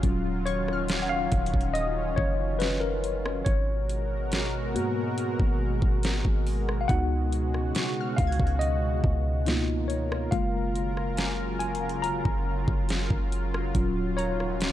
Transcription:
0.00 1.28 D#1 loud
0.00 3.43 D#3 medium
0.00 3.42 F#3 medium
0.00 3.43 C#4 medium
0.00 3.42 C#4 medium
0.00 3.43 F4 medium
0.00 0.67 A#6 medium
0.00 kick loud
0.00 closed hi-hat medium
0.04 3.43 F4 medium
0.46 0.99 C#5 loud
0.46 3.82 C#6 medium
0.46 closed hi-hat medium
0.68 cross-stick medium
0.73 4.06 F6 medium
0.88 snare loud
0.88 closed hi-hat medium
0.99 1.10 F#5 medium
0.99 4.30 G#6 medium
1.09 1.76 F5 loud
1.32 1.53 D#1 loud
1.32 kick loud
1.32 closed hi-hat medium
1.46 closed hi-hat medium
1.54 2.15 D#1 loud
1.54 kick loud
1.61 closed hi-hat soft
1.74 2.18 D#5 loud
1.74 3.85 D#6 medium
1.74 closed hi-hat medium
2.16 3.42 F#1 loud
2.16 2.57 C#5 loud
2.16 kick loud
2.59 2.82 B4 loud
2.59 snare loud
2.59 closed hi-hat medium
2.80 3.41 A#4 medium
3.04 closed hi-hat medium
3.26 cross-stick loud
3.45 4.77 G#1 loud
3.45 6.86 B2 medium
3.45 9.42 G#3 medium
3.45 6.86 F#4 loud
3.45 6.86 A#4 medium
3.45 4.70 C#5 medium
3.45 kick loud
3.45 closed hi-hat medium
3.90 closed hi-hat medium
4.32 snare loud
4.32 closed hi-hat medium
4.74 5.36 G#2 loud
4.74 5.99 A#3 medium
4.74 5.99 B3 medium
4.74 6.00 F#4 medium
4.74 closed hi-hat medium
5.18 closed hi-hat medium
5.40 5.81 G#1 loud
5.40 kick medium
5.82 6.23 G#1 loud
5.82 kick loud
6.03 snare loud
6.03 closed hi-hat medium
6.25 6.87 G#1 loud
6.25 kick medium
6.47 open hi-hat medium
6.69 cross-stick medium
6.81 6.88 F5 medium
6.88 7.72 C#2 loud
6.88 10.29 B2 medium
6.88 9.44 C#3 medium
6.88 8.14 B3 medium
6.88 8.14 D#4 medium
6.88 9.44 F#4 loud
6.88 8.14 F#4 medium
6.88 7.70 F#5 loud
6.88 kick loud
6.88 closed hi-hat medium
7.33 closed hi-hat medium
7.54 cross-stick medium
7.75 9.85 C#6 medium
7.75 snare loud
7.75 closed hi-hat medium
8.01 10.09 F6 medium
8.17 8.39 C#2 loud
8.17 8.61 F5 loud
8.17 kick medium
8.17 closed hi-hat medium
8.27 10.33 G#6 medium
8.32 closed hi-hat medium
8.40 9.01 C#2 loud
8.40 kick loud
8.47 closed hi-hat soft
8.59 9.92 D#5 loud
8.59 closed hi-hat medium
9.04 10.28 C#2 loud
9.04 kick loud
9.46 10.28 A#3 medium
9.46 10.28 B3 medium
9.46 10.28 D#4 medium
9.46 14.72 F4 loud
9.46 10.28 F4 medium
9.46 13.71 A#4 medium
9.46 snare loud
9.46 closed hi-hat medium
9.88 10.33 C#5 medium
9.88 closed hi-hat medium
10.12 cross-stick loud
10.31 12.21 F#1 loud
10.31 13.71 C#3 medium
10.31 14.72 F#3 medium
10.31 13.71 G#3 medium
10.31 13.71 A#3 medium
10.31 13.71 F4 medium
10.31 11.13 F5 loud
10.31 kick loud
10.31 closed hi-hat medium
10.76 closed hi-hat medium
10.97 cross-stick medium
11.17 14.14 G#5 medium
11.17 snare loud
11.17 closed hi-hat medium
11.59 12.00 G#5 medium
11.59 closed hi-hat medium
11.75 closed hi-hat medium
11.89 closed hi-hat soft
12.02 12.85 A#5 loud
12.02 closed hi-hat medium
12.25 12.66 F#1 loud
12.25 kick medium
12.68 13.09 F#1 loud
12.68 kick loud
12.89 snare loud
12.89 closed hi-hat medium
13.11 13.72 F#1 loud
13.11 kick medium
13.32 closed hi-hat medium
13.54 cross-stick loud
13.74 14.72 D#1 loud
13.74 14.72 D#3 medium
13.74 14.32 F#3 medium
13.74 14.72 C#4 medium
13.74 14.32 C#4 medium
13.74 14.32 F4 medium
13.74 kick loud
13.74 closed hi-hat medium
14.17 14.72 C#5 loud
14.17 14.72 A#5 medium
14.17 closed hi-hat medium
14.40 cross-stick medium
14.61 snare loud
14.61 closed hi-hat medium

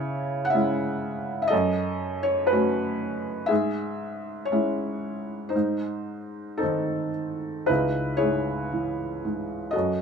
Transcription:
0.00 1.48 C#3 medium
0.00 0.54 E4 medium
0.00 0.49 C#5 medium
0.45 0.53 F#5 medium
0.50 1.41 E5 medium
0.54 1.49 G#3 soft
0.54 1.49 C#4 soft
0.54 1.49 E4 medium
1.42 1.50 E5 medium
1.48 3.45 A4 medium
1.48 2.26 D#5 medium
1.52 3.47 F#2 medium
2.23 2.50 C#5 medium
2.47 3.44 B4 medium
2.51 3.48 A3 medium
2.51 3.48 C#4 soft
2.51 3.48 F#4 medium
3.46 5.49 G#4 medium
3.46 4.51 E5 medium
3.51 5.50 G#2 medium
4.45 5.55 C#5 medium
4.52 5.52 G#3 soft
4.52 5.52 C#4 soft
4.52 5.52 E4 soft
5.49 6.57 D#4 soft
5.49 7.09 C5 medium
5.55 7.65 G#2 medium
6.57 6.61 C4 soft
6.57 6.62 D#4 soft
6.57 7.70 A4 medium
6.63 7.66 D#3 soft
6.63 7.66 C4 soft
6.63 7.66 D#4 soft
7.66 9.70 C#2 medium
7.66 9.69 D#4 soft
7.66 8.16 E4 soft
7.66 8.21 B4 medium
8.17 9.68 E4 soft
8.17 9.68 G#4 soft
8.17 9.76 C#5 medium
8.23 9.23 G#2 soft
8.72 9.71 E3 soft
9.25 9.73 G#2 soft
9.71 10.02 F#4 soft
9.71 10.02 A4 soft
9.71 10.02 D#5 medium
9.76 10.02 F#2 soft

